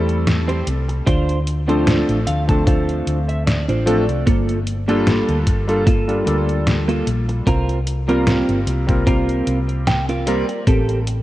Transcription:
Already playing: E2 G3 A3 C4 E4 A4
0.09 closed hi-hat
0.27 snare, closed hi-hat
0.48 C4 G4 C5, closed hi-hat
0.67 C2, closed hi-hat
0.88 muted clean electric guitar stroke, closed hi-hat
1.06 D2 D4 F4 C5, kick, closed hi-hat
1.29 closed hi-hat
1.47 closed hi-hat
1.68 F3 A3 C4 D4 F4 A4 C5, closed hi-hat
1.87 snare, closed hi-hat
2.09 A1, closed hi-hat
2.27 D2 F5, closed hi-hat
2.47 F3 A3 C4 D4 A4 A5, kick, closed hi-hat
2.66 D4 F4 C5 F5, kick, closed hi-hat
2.89 closed hi-hat
3.07 D2, closed hi-hat
3.29 E5, closed hi-hat
3.47 D5, snare, closed hi-hat
3.68 A1 D4 F4 C5 D5, closed hi-hat
3.86 F3 A3 C4 D4 A4, closed hi-hat
4.08 C2, muted clean electric guitar stroke, closed hi-hat
4.27 G1 A#3 F4 A4, kick, closed hi-hat
4.49 closed hi-hat
4.67 closed hi-hat
4.88 G3 A#3 D4 F4 A4, closed hi-hat
5.07 snare, closed hi-hat
5.29 D2, closed hi-hat
5.47 G1, kick, closed hi-hat
5.68 G3 A#3 D4 F4 A4, closed hi-hat
5.86 A#3 F4 A4, kick, closed hi-hat
6.08 G3 A#3 D4 F4 A4, closed hi-hat
6.25 D2 G3 A#3 D4 F4 A4, closed hi-hat
6.49 closed hi-hat
6.67 snare, closed hi-hat
6.88 A#3 F4 A4, closed hi-hat
7.07 A#1, closed hi-hat
7.29 muted clean electric guitar stroke, closed hi-hat
7.47 C2 C4 F4 A#4, kick, closed hi-hat
7.69 closed hi-hat
7.87 closed hi-hat
8.08 G3 A#3 C4 F4 A#4, closed hi-hat
8.27 snare, closed hi-hat
8.49 G1, closed hi-hat
8.67 C2, closed hi-hat
8.87 G3 A#3 C4 F4 A#4, kick, closed hi-hat
9.07 C4 F4 A#4, kick, closed hi-hat
9.29 closed hi-hat
9.47 C2, closed hi-hat
9.69 closed hi-hat
9.87 G5, snare, closed hi-hat
10.09 C4 F4 A#4 F5, closed hi-hat
10.26 G3 A#3 C4 F4 A#4 D5, closed hi-hat
10.49 muted clean electric guitar stroke, closed hi-hat
10.67 A1 C4 G4 A4, kick, closed hi-hat
10.89 closed hi-hat
11.07 closed hi-hat

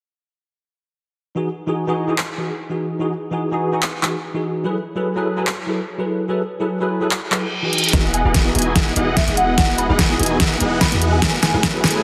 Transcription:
1.35 E3 D#4 F#4 G#4
1.66 E3 D#4 F#4 G#4
1.87 E3 D#4 F#4 G#4
2.07 E3 D#4 F#4 G#4
2.18 clap
2.37 E3 D#4 F#4 G#4
2.69 E3 D#4 F#4 G#4
2.99 E3 D#4 F#4 G#4
3.31 E3 D#4 F#4 G#4
3.51 E3 D#4 F#4 G#4
3.72 E3 D#4 F#4 G#4
3.82 clap
4.02 E3 D#4 F#4 G#4, clap
4.34 E3 D#4 F#4 G#4
4.64 F#3 E4 G#4 A4 B4
4.95 F#3 E4 G#4 A4 B4
5.16 F#3 E4 G#4 A4 B4
5.36 F#3 E4 G#4 A4 B4
5.47 clap
5.66 F#3 E4 G#4 A4 B4
5.98 F#3 E4 G#4 A4 B4
6.28 F#3 E4 G#4 A4 B4
6.59 F#3 E4 G#4 A4 B4
6.80 F#3 E4 G#4 A4 B4
7.00 F#3 E4 G#4 A4 B4
7.11 clap, reverse cymbal
7.31 F#3 E4 G#4 A4 B4, clap
7.62 E3 D#4 F#4 G#4
7.73 closed hi-hat
7.78 closed hi-hat
7.84 closed hi-hat
7.89 E3, closed hi-hat
7.93 E1 E3 G#3 B3 D#4 E4 F#4 G#4 D#5 F#5, kick, snare, closed hi-hat, riser
8.14 G#5, closed hi-hat
8.24 E1 E3 B3 D#4 E4 F#4 G#4 D#5 F#5
8.34 kick, snare, closed hi-hat
8.44 E3 D#4 F#4 G#4
8.55 E1 B3 E4 G#4 D#5 G#5, closed hi-hat
8.59 closed hi-hat
8.62 E3 D#4, closed hi-hat
8.66 F#4 G#4
8.76 E1 B3 E4 G#4 D#5 F#5, kick, snare, closed hi-hat
8.95 E1 E3 B3 D#4 E4 F#4 G#4 D#5 F#5, closed hi-hat
9.17 E5, kick, snare, closed hi-hat
9.27 E1 E3 B3 D#4 E4 F#4 G#4 D#5 F#5, closed hi-hat
9.37 F#5, closed hi-hat
9.57 E1 E3 B3 D#4 E4 F#4 G#4 D#5 F#5, kick, snare, closed hi-hat
9.78 B5, closed hi-hat
9.88 E1 E3 B3 D#4 E4 F#4 G#4 D#5 F#5 B5
9.99 kick, snare, closed hi-hat
10.09 E3 D#4 F#4 G#4
10.19 E1 B3 E4 G#4 D#5 G#5, closed hi-hat
10.23 closed hi-hat
10.26 E3 D#4, closed hi-hat
10.31 F#4 G#4
10.40 E1 B3 E4 G#4 D#5 F#5, kick, snare, closed hi-hat
10.59 E1 E3 B3 D#4 E4 F#4 G#4 D#5 F#5, closed hi-hat
10.81 B5, kick, snare, closed hi-hat
10.91 E2 E3 B3 D#4 E4 F#4 G#4 D#5 F#5, closed hi-hat
11.02 closed hi-hat
11.13 G#5
11.21 F#1 F#3 A3 B3 E4 G#4 B4 F#5 G#5, kick, snare, closed hi-hat
11.43 G#5, snare, closed hi-hat
11.53 F#1 F#3 A3 E4 G#4 A4 B4 F#5
11.63 kick, snare, closed hi-hat
11.73 F#3 E4 G#4 A4 B4
11.84 F#1 A3 E4 G#4 B4 G#5, snare, closed hi-hat
11.87 closed hi-hat
11.91 F#3 E4, closed hi-hat
11.95 G#4 A4 B4

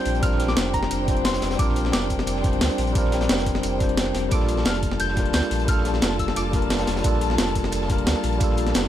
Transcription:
Already playing: G3 C4 D4 F4 A#4 C5 G5 G6
0.05 A#1, closed hi-hat, open hi-hat
0.15 closed hi-hat
0.20 G3 C4 D4 F6, kick, closed hi-hat, ride bell
0.24 F4 A#4
0.31 snare
0.40 snare, closed hi-hat
0.48 D6, snare
0.57 F1, snare, closed hi-hat, ride bell
0.73 A#5, kick, closed hi-hat
0.82 snare
0.91 F1, closed hi-hat, ride bell
1.05 G3 C4 D4, kick, snare, closed hi-hat
1.09 F4 C5
1.17 closed hi-hat
1.24 C6, snare, closed hi-hat, ride bell
1.33 snare, closed hi-hat
1.41 F1, snare, closed hi-hat, open hi-hat
1.51 snare, closed hi-hat
1.56 A#1 G3 C4 D4 D6, kick, closed hi-hat, ride bell
1.61 F4 A#4
1.68 snare
1.76 closed hi-hat
1.85 snare
1.92 F1 D6, snare, closed hi-hat, ride bell
2.02 closed hi-hat
2.10 kick, closed hi-hat
2.19 snare
2.27 closed hi-hat, ride bell
2.35 snare
2.41 G3 C4 D4, kick, snare, closed hi-hat
2.46 F4 C5
2.53 closed hi-hat
2.61 D2, snare, closed hi-hat, ride bell
2.70 closed hi-hat
2.78 A#1, closed hi-hat, open hi-hat
2.87 closed hi-hat
2.92 G3 C4 D4, kick, closed hi-hat, ride bell
2.97 F4 A#4
3.05 snare
3.12 snare, closed hi-hat
3.21 snare, closed hi-hat
3.29 F1, snare, closed hi-hat, ride bell
3.38 snare, closed hi-hat
3.46 kick, closed hi-hat
3.55 snare
3.63 F1, closed hi-hat, ride bell
3.78 G3 C4 D4, kick, snare, closed hi-hat
3.82 F4 C5
3.89 closed hi-hat
3.97 snare, closed hi-hat, ride bell
4.15 F1, snare, closed hi-hat, open hi-hat
4.29 A#1 G3 A#3 D4 F4 A5 D6, kick, closed hi-hat, ride bell
4.33 F4 A4
4.40 snare
4.48 closed hi-hat
4.57 snare
4.65 F1 F6, snare, closed hi-hat, ride bell
4.75 closed hi-hat
4.83 kick, closed hi-hat
4.92 snare
5.00 G6, closed hi-hat, ride bell
5.08 snare
5.14 G3 A#3 D4, kick, snare, closed hi-hat
5.18 F4 A#4
5.26 closed hi-hat
5.33 D2 G6, snare, closed hi-hat, ride bell
5.42 closed hi-hat
5.51 A#1, closed hi-hat, open hi-hat
5.59 closed hi-hat
5.65 G3 A#3 D4 F6, kick, closed hi-hat, ride bell
5.69 F4 A4
5.78 snare
5.85 snare, closed hi-hat
5.93 snare
6.02 F1, snare, closed hi-hat, ride bell
6.19 E6, kick, closed hi-hat
6.28 snare
6.36 F1 D6, closed hi-hat, ride bell
6.50 G3 A#3 D4, kick, snare, closed hi-hat
6.55 F4 A#4
6.62 closed hi-hat
6.70 snare, closed hi-hat, ride bell
6.79 snare, closed hi-hat
6.87 F1, snare, closed hi-hat, open hi-hat
6.96 snare, closed hi-hat
7.02 A#1 G3 A#3 D4, kick, closed hi-hat, ride bell
7.06 F4 A4
7.13 snare
7.21 closed hi-hat
7.30 snare
7.38 F1, snare, closed hi-hat, ride bell
7.47 closed hi-hat
7.55 kick, closed hi-hat
7.64 snare
7.72 closed hi-hat, ride bell
7.81 snare
7.87 G3 A#3 D4, kick, snare, closed hi-hat
7.91 F4 A#4
7.98 closed hi-hat
8.07 D2, snare, closed hi-hat, ride bell
8.15 closed hi-hat
8.23 A#1, closed hi-hat, open hi-hat
8.32 closed hi-hat
8.38 G3 A#3 D4, kick, closed hi-hat, ride bell
8.42 F4 A4
8.50 snare
8.57 closed hi-hat
8.67 snare, closed hi-hat
8.74 F1, snare, closed hi-hat, ride bell

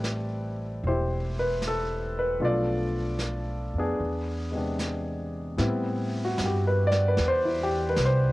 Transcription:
Already playing: A1 G3 A3 C4 E4 G4 B4 D5
0.04 snare, hi-hat pedal
0.84 E1 C5, brush sweep
0.88 E4 G4
1.39 B4
1.62 snare, hi-hat pedal
1.68 A4
2.19 B4
2.40 B1 F3 A3 B3 D4 F4 A4, brush sweep
2.45 D5
3.19 snare, hi-hat pedal
3.74 F2
3.78 B3 D4 G#4
3.99 E2, brush sweep
4.52 C3 G#3 B3
4.57 D4
4.79 snare, hi-hat pedal
5.57 A2 G3 B3 C4 E4, brush sweep, snare
6.25 F#4
6.38 G2, snare, hi-hat pedal
6.46 G4
6.67 B4
6.87 D5
6.92 snare
7.08 B4
7.17 E2, brush sweep, snare
7.28 C5
7.45 E4
7.63 G4
7.89 B4
7.96 C2, snare, hi-hat pedal
8.05 C5

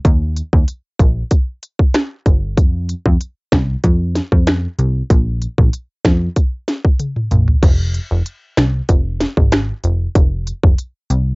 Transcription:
0.05 D#2, kick, closed hi-hat
0.36 closed hi-hat
0.53 D#2, kick
0.68 closed hi-hat
0.99 A#1, kick, closed hi-hat
1.31 kick, closed hi-hat
1.63 closed hi-hat
1.79 kick
1.94 finger snap, cross-stick, snare, closed hi-hat
2.26 G1, kick, closed hi-hat
2.57 F2, kick, closed hi-hat
2.89 closed hi-hat
3.06 F2, kick
3.21 closed hi-hat
3.52 C2, finger snap, kick, snare, closed hi-hat
3.84 F2, kick, closed hi-hat
4.15 snare, closed hi-hat
4.32 F2, kick
4.47 finger snap, cross-stick, snare, closed hi-hat
4.79 C2, closed hi-hat
5.10 A#1, kick, closed hi-hat
5.42 closed hi-hat
5.58 A#1, kick
5.73 closed hi-hat
6.05 F2, finger snap, kick, snare, closed hi-hat
6.36 kick, closed hi-hat
6.68 snare, closed hi-hat
6.85 kick
6.99 closed hi-hat, high tom
7.16 mid tom
7.31 A#1, closed hi-hat, mid tom
7.48 floor tom
7.63 F1, kick, closed hi-hat, crash
7.94 closed hi-hat
8.11 F1
8.26 closed hi-hat
8.57 C2, finger snap, snare, closed hi-hat
8.89 F1, kick, closed hi-hat
9.20 snare, closed hi-hat
9.37 G#1, kick
9.52 finger snap, cross-stick, snare, closed hi-hat
9.84 F1, closed hi-hat
10.15 F1, kick, closed hi-hat
10.47 closed hi-hat
10.63 F1, kick
10.78 closed hi-hat
11.10 C2, closed hi-hat

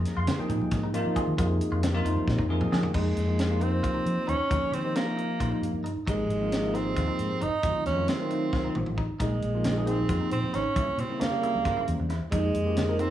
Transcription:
Already playing: C3 F3 A#3 D#4 G#4 A#5
0.05 snare, closed hi-hat, low conga
0.16 F2 F4 C6
0.27 snare, closed hi-hat, low conga
0.38 C3 F3 A#3 D#4 G#4 G5, muted fingered electric bass stroke
0.49 A#2 D#4, closed hi-hat, low conga
0.61 high conga
0.71 G#2, kick, snare, closed hi-hat
0.83 D#4
0.94 C3 F3 A#3 D#4 F4, closed hi-hat
1.05 F3
1.16 G#4, kick, closed hi-hat
1.27 D#3
1.38 F2 C3 F3 A#3 D#4 F4 G#4, kick, closed hi-hat, high conga, low conga
1.61 closed hi-hat, low conga
1.71 F2 F4, low conga
1.83 snare, closed hi-hat, low conga
1.94 C3 F3 A#3 D#4 F4, low conga
2.05 F2 D#4, closed hi-hat
2.16 high conga
2.28 A#2, kick, snare
2.39 F2 D#4, kick
2.49 C3 F3 A#3 D#4 G#4, low conga
2.61 mid tom, high conga
2.72 F3 G#4, snare, low conga
2.83 floor tom, low conga
2.94 F2 C3 F3 G#3 A#3 D#4 G4, kick, crash
3.16 F2, snare, closed hi-hat
3.27 C3 F3 A#3 D#4 F4
3.39 snare, closed hi-hat
3.50 C3 F3 A#3 D#4 F4
3.61 C4 D#4, closed hi-hat
3.83 C2 F4, kick, closed hi-hat
3.94 D#4, muted fingered electric bass stroke
4.06 F3, closed hi-hat
4.17 muted fingered electric bass stroke
4.27 D#2 C#4 D#4, closed hi-hat
4.49 D#2 C3 F3 A#3 D#4 G4, kick, closed hi-hat
4.72 D#3 C4, closed hi-hat
4.84 C3 F3 A#3 D#4 G4
4.95 A#3, snare, closed hi-hat
5.06 C3 F3 A#3 D#4 A#4
5.17 D#4, closed hi-hat
5.40 A#1 F4, kick, closed hi-hat
5.50 D#4
5.62 G2, closed hi-hat
5.73 G2
5.84 D#4, closed hi-hat
5.96 muted fingered electric bass stroke
6.07 G#1 C3 F3 G#3 A#3 D#4 G4, kick, closed hi-hat
6.29 G#1, closed hi-hat
6.41 C3 F3 A#3 D#4 A#4
6.52 snare, closed hi-hat
6.62 C3 F3 A#3 D#4 G#4
6.74 C4 D#4, snare, closed hi-hat
6.96 D#2 F4, kick, snare, closed hi-hat
7.08 D#4, muted fingered electric bass stroke
7.19 G#2, closed hi-hat
7.31 muted fingered electric bass stroke
7.41 G1 D#4, closed hi-hat
7.53 muted fingered electric bass stroke
7.63 F1 D#3 F#3 A3 C4 D#4 F4, kick, closed hi-hat
7.86 F2 C#4, snare, closed hi-hat
7.96 D#3 F#3 A3 C4 F4
8.08 C4, snare, closed hi-hat
8.19 D#3 F#3 A3 C4 F4
8.30 D#4, closed hi-hat
8.53 C2 F4, kick, snare
8.64 D#4
8.75 A1, mid tom
8.86 A1, mid tom
8.98 D#4, kick
9.10 muted fingered electric bass stroke
9.20 A#1 C3 F3 G#3 A#3 D#4 G#4, kick, closed hi-hat, high conga
9.42 A#1, closed hi-hat
9.54 C3 F3 A#3 D#4 F4
9.64 snare, closed hi-hat, low conga
9.76 C3 F3 A#3 D#4 G#4
9.87 C4 D#4, closed hi-hat
9.98 high conga
10.09 F2 F4, kick, closed hi-hat
10.21 D#4, muted fingered electric bass stroke
10.31 A#2 C4, closed hi-hat
10.43 muted fingered electric bass stroke, low conga
10.54 G#1 C#4 D#4, snare, closed hi-hat
10.65 muted fingered electric bass stroke
10.76 C2 C#3 G3 A#3 C4 E4, kick, closed hi-hat, high conga
10.87 muted fingered electric bass stroke
10.97 C3 C4, closed hi-hat
11.09 C#3 G3 A#3 C4 E4
11.21 A#3, snare, closed hi-hat, low conga
11.31 C#3 G3 A#3 C4 G4
11.43 E4, closed hi-hat, low conga
11.55 high conga
11.65 G2 F4, kick, snare, closed hi-hat
11.77 E4
11.87 E2 C5, closed hi-hat
11.99 E2, low conga
12.10 E4, snare, closed hi-hat
12.21 muted fingered electric bass stroke
12.31 F2 C3 F3 G#3 A#3 D#4 G4, kick, closed hi-hat, high conga
12.54 F2, closed hi-hat
12.65 C3 F3 A#3 D#4 G4
12.77 snare, closed hi-hat, low conga
12.88 C3 F3 A#3 D#4 A#4
12.99 C4 D#4, closed hi-hat

